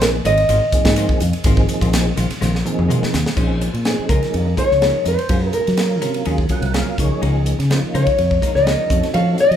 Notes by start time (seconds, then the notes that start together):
Already playing: A#1 F3 A#3 C4 D#4 G#4
0.00 A#4, muted clean electric guitar stroke, snare, hi-hat pedal, ride
0.13 muted clean electric guitar stroke
0.25 G#1 D#3 G#3 C4 F4 D#5, hi-hat pedal, ride
0.37 muted clean electric guitar stroke, ride
0.49 G#1 D#3 G#3 C4 F4, hi-hat pedal, ride
0.62 muted clean electric guitar stroke
0.72 F3 A#3 C4 D#4 G#4, muted fingered electric bass stroke, muted clean electric guitar stroke, kick, hi-hat pedal, ride
0.85 G#2, kick, snare, ride
0.96 D#3 G#3 C4 F4, snare, hi-hat pedal, ride
1.09 muted fingered electric bass stroke, muted clean electric guitar stroke, kick
1.20 F2, muted clean electric guitar stroke, hi-hat pedal, ride
1.33 ride
1.44 G#1 D#3 F3 G#3 A#3 C4 D#4 F4 G#4, kick, hi-hat pedal, ride
1.57 kick
1.69 muted clean electric guitar stroke, hi-hat pedal, ride
1.81 A#1 G#3 C4 F4, kick, ride
1.92 muted clean electric guitar stroke, snare, hi-hat pedal, ride
2.06 muted clean electric guitar stroke
2.16 A#1 D#3 G#3 C4 F4, snare, hi-hat pedal, ride
2.30 muted clean electric guitar stroke, muted fingered electric bass stroke, snare, ride
2.41 A#1 D#3 G#3 C4 F4, snare, hi-hat pedal
2.54 muted clean electric guitar stroke, snare
2.65 F3 A#3 C4 D#4 G#4, muted clean electric guitar stroke, hi-hat pedal, mid tom
2.79 F2, mid tom
2.89 D#3 G#3 C4 F4, hi-hat pedal, mid tom
3.02 muted clean electric guitar stroke, muted fingered electric bass stroke, snare
3.13 D#2, muted clean electric guitar stroke, snare, hi-hat pedal
3.26 snare
3.36 A#1 F3 C4 C#4 D#4 G#4 C5, kick, crash
3.61 muted clean electric guitar stroke, hi-hat pedal, ride
3.74 A#2, muted clean electric guitar stroke, ride
3.85 F3 C4 C#4 D#4 G#4, muted clean electric guitar stroke, snare, ride
3.98 muted clean electric guitar stroke, muted fingered electric bass stroke
4.09 C#2 F3 G#3 A#3 C#4 D#4 F4 G#4 A#4, kick, hi-hat pedal, ride
4.22 muted clean electric guitar stroke, snare, ride
4.34 F2, ride
4.45 muted clean electric guitar stroke
4.57 F3 G#3 A#3 C#4 D#4 F4 G#4 A#4 C#5, kick, hi-hat pedal, ride
4.70 C#2, muted clean electric guitar stroke, snare
4.82 G#3 D#4 F4 A#4, snare, ride
5.05 F2 G#3 D#4 F4 A#4 C5, hi-hat pedal, ride
5.18 muted clean electric guitar stroke, ride
5.29 F#2 F#3 G#3 A#3 C#4 F4 G#4 A#4, kick, ride
5.53 A#4, muted clean electric guitar stroke, hi-hat pedal, ride
5.66 F#3, muted clean electric guitar stroke, snare, ride
5.77 F#3 A#3 C#4 F4 A#4, muted clean electric guitar stroke, snare, ride
5.90 muted clean electric guitar stroke
6.01 C3 G#3 C#4 F4 A#4, hi-hat pedal, ride
6.14 muted clean electric guitar stroke, ride
6.25 D#2 F#3 A#3 C#4 F4 G#4, ride
6.38 muted clean electric guitar stroke, kick
6.49 F#3 A#3 C#4 F4 G#4 A#4 F#5, kick, hi-hat pedal, ride
6.62 C2, muted clean electric guitar stroke, ride
6.73 F#3 C#4 F4 G#4 F5, snare, ride
6.98 C#2 F3 G#3 A#3 C#4 D#4 F4 G#4 A#4 C#5, kick, hi-hat pedal, ride
7.11 muted clean electric guitar stroke
7.22 C#2 G#3 D#4 F4 A#4, ride
7.46 muted clean electric guitar stroke, hi-hat pedal, ride
7.59 C#3, muted clean electric guitar stroke, snare, ride
7.70 F3 A#3 C#4 D#4 F4 C5, muted clean electric guitar stroke, snare, ride
7.82 muted clean electric guitar stroke, muted fingered electric bass stroke
7.94 C#3 G#3 D#4 F4 A#4 C#5, hi-hat pedal, ride
8.07 muted clean electric guitar stroke, kick, ride
8.18 F2, ride
8.31 muted clean electric guitar stroke, kick
8.42 F3 G#3 A#3 C#4 D#4 F4 A#4, kick, hi-hat pedal, ride
8.55 C#2 D#5, muted clean electric guitar stroke, snare
8.66 G#3 D#4 F4 A#4, snare, ride
8.90 F2 F#3 A3 C4 C#4 D#4 F#4 A4 C#5, kick, hi-hat pedal, ride
9.03 muted clean electric guitar stroke, snare, ride
9.14 F3 A3 D#4 F#4 C#5 F5, ride
9.38 D#5, muted clean electric guitar stroke, hi-hat pedal, ride
9.51 F3, muted clean electric guitar stroke, ride